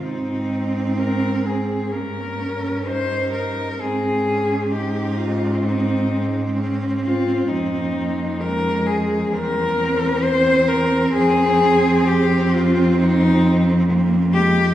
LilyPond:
<<
  \new Staff \with { instrumentName = "Cello" } { \time 4/4 \key aes \major \tempo 4 = 65 ees'4 bes'8 aes'8 bes'4 c''8 bes'8 | aes'4 g'8 f'8 ees'4 r8 f'8 | ees'4 bes'8 aes'8 bes'4 c''8 bes'8 | aes'4 g'8 f'8 ees'4 r8 g'8 | }
  \new Staff \with { instrumentName = "Cello" } { \time 4/4 \key aes \major c'2 bes8 des'8 ees'4 | c'8 des'8 ees'4 c'8 aes8 des'8 c'8 | bes4 aes4 g8 c'4.~ | c'2. bes8 aes8 | }
  \new Staff \with { instrumentName = "Cello" } { \time 4/4 \key aes \major c'2 des'2 | c'1~ | c'2 c'2~ | c'1 | }
  \new Staff \with { instrumentName = "Cello" } { \clef bass \time 4/4 \key aes \major aes,2 g,2 | aes,1 | f,2 e,2 | f,1 | }
>>